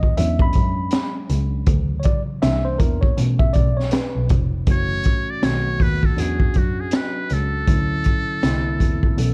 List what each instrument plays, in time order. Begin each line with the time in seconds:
Already playing: tine electric piano D#5
0.03 kick
0.17 double bass E2, tine electric piano F#3 G#3 C#4 D4 E5, closed hi-hat
0.39 tine electric piano B5, kick
0.53 double bass F#2, kick, closed hi-hat
0.91 snare, closed hi-hat
1.30 double bass C#2, closed hi-hat
1.67 double bass D2, tine electric piano C#3 E3 F#3, kick, closed hi-hat
2.00 tine electric piano C#5, closed hi-hat
2.05 tine electric piano D5, kick
2.42 double bass C2, tine electric piano E3 A#3 D4 E5, snare, closed hi-hat
2.65 tine electric piano C5
2.78 double bass E2, tine electric piano A#4, kick, closed hi-hat
3.01 tine electric piano C#5, kick
3.16 double bass B2, tine electric piano E3 A3 C#4, closed hi-hat
3.39 tine electric piano E5, kick
3.53 double bass B1, tine electric piano D5, kick, closed hi-hat
3.77 tine electric piano C#5, snare
3.91 tine electric piano B4, snare, closed hi-hat
4.15 double bass B1
4.29 double bass F1, kick, closed hi-hat
4.66 double bass F#1, tine electric piano E3 A3 C#4 F#4, kick, closed hi-hat
4.71 muted trumpet C#5
5.03 kick, closed hi-hat
5.30 muted trumpet D5
5.42 double bass B1, tine electric piano D#3 A3 B3 F#4, muted trumpet C#5, snare, closed hi-hat
5.80 double bass D#2, muted trumpet B4, kick, open hi-hat
6.03 muted trumpet A4, kick
6.17 double bass E2, tine electric piano F#3 C#4 D4 F#4, muted trumpet G#4, closed hi-hat
6.40 double bass F#2, kick
6.54 double bass F#2, muted trumpet F#4, kick, closed hi-hat
6.80 muted trumpet G#4
6.91 snare, closed hi-hat
6.95 muted trumpet B4
7.30 double bass C#2, muted trumpet A4, closed hi-hat
7.67 double bass D2, tine electric piano D3 F#3 C#4 E4, kick, closed hi-hat
8.04 kick, closed hi-hat
8.42 double bass C2, tine electric piano D3 A#3 C4 E4, snare, closed hi-hat
8.80 double bass E2, kick, closed hi-hat
9.03 kick
9.16 double bass B1, tine electric piano E3 B3 C#4 A4, closed hi-hat